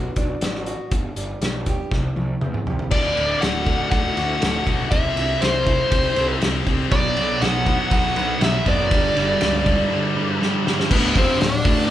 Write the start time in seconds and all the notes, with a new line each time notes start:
Already playing: B2 B3 D4 F#4 B4
0.16 B1 D4, kick, closed hi-hat
0.41 A1 B3, snare, closed hi-hat
0.55 snare
0.66 F#4, closed hi-hat
0.91 G1 G2, kick, closed hi-hat
1.16 G1 G3, closed hi-hat
1.41 B1 B3, snare, closed hi-hat
1.66 G4, kick, closed hi-hat
1.92 C2 C3, kick, snare
2.16 C2 E4, high tom
2.41 E2 C4, mid tom
2.54 mid tom
2.66 C2 G4, floor tom
2.79 floor tom
2.91 D1 D2 A2 D3 D5, kick, crash
3.16 D1 D2 A2 D3, ride
3.41 D1 D2 A2 D3 F#4 F#5, snare, ride
3.66 D2 A2 D3, kick, ride
3.91 D1 D2 A2 D3 A3 F#5, kick, ride
4.16 D2 A2 D3 F#4, ride
4.42 D1 D2 A2 D3 A3, snare, ride
4.66 B1 D2 A2 D3, kick, ride
4.91 C2 C3 G3 C4 E5, kick, ride
5.16 C2 C3 G3 C4 E4, ride
5.41 C2 C3 G3 C4 C5, snare, ride
5.66 C3 G3 C4 E4, kick, ride
5.91 C2 C3 G3 C4 G4, kick, ride
6.16 C2 C3 G3 C4 C5, ride
6.41 C2 C3 G3 C4 G4, snare, ride
6.66 C2 C3 G3 C4, kick, ride
6.91 B1 B2 F#3 B3 D5, kick, ride
7.16 B1 B2 F#3 B3, ride
7.41 B1 B2 F#3 B3 F#5, snare, ride
7.66 B2 F#3 B3, kick, ride
7.91 B1 B2 F#3 B3 F#5, kick, ride
8.15 B1 B2 F#3 B3, ride
8.41 B1 B2 F#3 B3 E5, snare, ride
8.66 F#1 B2 F#3 B3 D5, kick, ride
8.91 G1 G2 D3 G3, kick, ride
9.16 G1 G2 D3 G3, ride
9.41 C#2 G2 D3 G3, snare, ride
9.66 G2 D3 G3, kick, ride
9.91 G2 D3 G3
10.16 G2 D3 G3
10.41 G2 D3 G3, snare
10.66 G2 D3 G3, snare
10.80 snare
10.90 D1 D2 A2 D3 B3 D4 F#4 A4 B4, kick, crash
11.15 F1 F2 C3 F3 C4 C5, kick, open hi-hat
11.40 D1 D2 A2 D4 D5, snare, open hi-hat
11.65 A1 A2 E3 A3, kick, open hi-hat